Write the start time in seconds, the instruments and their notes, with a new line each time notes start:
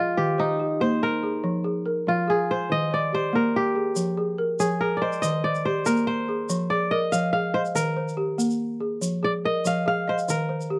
Already playing: kora F4, balafon G#4 D#5
0.17 balafon D#3, kora G4
0.38 kora D#4, balafon C5
0.60 balafon G4
0.80 balafon A#3, kora C5
1.03 kora A#4
1.23 balafon G#4
1.44 balafon F3
1.64 balafon G#4
1.86 balafon A#4
2.07 balafon F3, kora F4
2.27 balafon G#4, kora G#4
2.51 kora C5
2.70 balafon D#3, kora D#5
2.91 balafon C5, kora D5
3.13 balafon G4, kora C5
3.33 balafon A#3, kora A#4
3.56 kora G4
3.75 balafon G#4
3.96 balafon F3, shaker
4.17 balafon G#4
4.38 balafon A#4
4.60 balafon F3, kora G#4, shaker
4.81 balafon G#4, kora A#4
4.97 kora D5
5.02 kora C5, balafon D#5
5.12 shaker
5.22 balafon D#3, kora D#5, shaker
5.44 balafon C5, kora D5
5.55 shaker
5.65 balafon G4, kora C5
5.86 balafon A#3, kora A#4, shaker
5.97 shaker
6.07 kora C5
6.28 balafon G#4
6.49 balafon F3, shaker
6.70 balafon G#4, kora D5
6.91 balafon A#4, kora D#5
7.12 balafon F3, kora F5, shaker
7.33 balafon G#4, kora F5
7.54 kora C5, balafon D#5
7.65 shaker
7.75 balafon D#3, kora A#4, shaker
7.96 balafon C5
8.09 shaker
8.17 balafon G4
8.38 balafon A#3, shaker
8.50 shaker
8.80 balafon G#4
9.01 balafon F3, shaker
9.23 balafon G#4, kora D5
9.45 balafon A#4, kora D#5
9.65 balafon F3, kora F5, shaker
9.86 balafon G#4, kora F5
10.08 kora C5, balafon D#5
10.19 shaker
10.28 balafon D#3, kora A#4, shaker
10.49 balafon C5
10.61 shaker
10.70 balafon G4